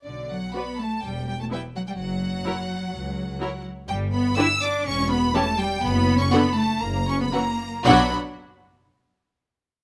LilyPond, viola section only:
\new Staff \with { instrumentName = "Viola section" } { \time 4/4 \key b \minor \tempo 4 = 123 r4 <b fis'>4 r4 <b e'>4 | r4 <fis e'>4 r4 <fis e'>4 | r4 <d d'>4 r4 <e cis'>4 | r4 <d d'>4 r4 <e cis'>4 |
<fis d'>8 r2. r8 | }